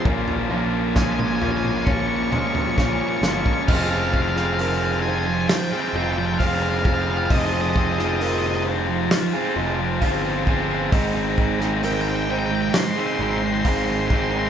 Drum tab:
CC |----------------|x---------------|----------------|----------------|
HH |----------------|----o---o---o---|o---o---o---o---|o---o---o---o---|
SD |----o-------o-o-|---o----o-------|---o----o-------|---o----o-------|
T2 |-----o-o--o-----|----------------|----------------|----------------|
FT |oo----o-o-oo----|----------------|----------------|----------------|
BD |o---o---o---o--o|o-o---------o-o-|o-o---------o-o-|o-o---------o-o-|